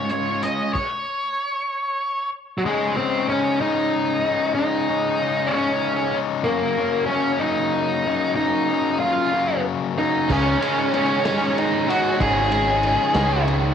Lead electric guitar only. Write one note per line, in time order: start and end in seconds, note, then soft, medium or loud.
0.11 0.41 C#5 medium
0.43 0.73 D#5 loud
0.73 2.29 C#5 medium
2.58 2.65 F#3 medium
2.65 2.95 G#3 medium
2.96 3.27 C4 medium
3.29 3.59 C#4 medium
3.61 4.53 D#4 loud
4.55 5.54 D#4 loud
5.47 6.17 C#4 loud
6.44 7.06 A#3 loud
7.06 7.42 C#4 medium
7.39 8.34 D#4 loud
8.36 9.00 D#4 loud
9.00 9.61 F4 loud
9.98 10.31 D#4 medium
10.32 10.90 C#4 medium
10.94 11.59 C#4 medium
11.58 11.89 D#4 medium
11.90 12.22 F#4 loud
12.21 13.44 G#4 loud